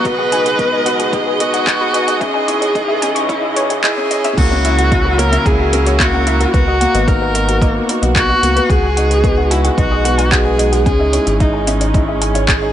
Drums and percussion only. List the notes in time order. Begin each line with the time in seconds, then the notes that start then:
0.05 kick, closed hi-hat
0.32 closed hi-hat
0.46 closed hi-hat
0.59 kick, closed hi-hat
0.86 closed hi-hat
1.00 closed hi-hat
1.13 kick, closed hi-hat
1.40 closed hi-hat
1.54 closed hi-hat
1.67 kick, clap, closed hi-hat
1.94 closed hi-hat
2.08 closed hi-hat
2.21 kick, closed hi-hat
2.48 closed hi-hat
2.62 closed hi-hat
2.75 kick, closed hi-hat
3.02 closed hi-hat
3.16 closed hi-hat
3.29 kick, closed hi-hat
3.57 closed hi-hat
3.70 closed hi-hat
3.83 kick, clap, closed hi-hat
4.11 closed hi-hat
4.24 closed hi-hat
4.38 kick, closed hi-hat, crash
4.65 closed hi-hat
4.79 closed hi-hat
4.92 kick, closed hi-hat
5.19 closed hi-hat
5.33 closed hi-hat
5.46 kick, closed hi-hat
5.73 closed hi-hat
5.86 closed hi-hat
6.00 kick, clap, closed hi-hat
6.27 closed hi-hat
6.41 closed hi-hat
6.54 kick, closed hi-hat
6.81 closed hi-hat
6.95 closed hi-hat
7.08 kick, closed hi-hat
7.35 closed hi-hat
7.49 closed hi-hat
7.62 kick, closed hi-hat
7.89 closed hi-hat
8.03 closed hi-hat
8.16 kick, clap, closed hi-hat
8.43 closed hi-hat
8.57 closed hi-hat
8.70 kick, closed hi-hat
8.97 closed hi-hat
9.11 closed hi-hat
9.24 kick, closed hi-hat
9.51 closed hi-hat
9.65 closed hi-hat
9.78 kick, closed hi-hat
10.05 closed hi-hat
10.19 closed hi-hat
10.32 kick, clap, closed hi-hat
10.59 closed hi-hat
10.73 closed hi-hat
10.86 kick, closed hi-hat
11.13 closed hi-hat
11.27 closed hi-hat
11.40 kick, closed hi-hat
11.67 closed hi-hat
11.81 closed hi-hat
11.94 kick, closed hi-hat
12.22 closed hi-hat
12.35 closed hi-hat
12.48 kick, clap, closed hi-hat